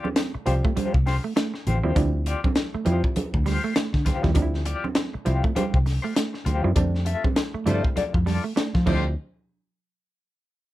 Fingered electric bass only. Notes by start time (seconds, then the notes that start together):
0.35 muted fingered electric bass stroke
0.47 C2
0.77 muted fingered electric bass stroke
0.94 C2
1.67 A1
1.84 D#2
1.96 D2
2.74 muted fingered electric bass stroke
2.86 F2
3.17 muted fingered electric bass stroke
3.34 D2
3.94 D3
4.24 D#2
4.36 D2
5.15 muted fingered electric bass stroke
5.27 C2
5.56 muted fingered electric bass stroke
5.74 C2
6.46 D2
6.64 F#2
6.76 F2
7.54 muted fingered electric bass stroke
7.66 G2
7.97 muted fingered electric bass stroke
8.14 F2
8.75 F3
8.87 D2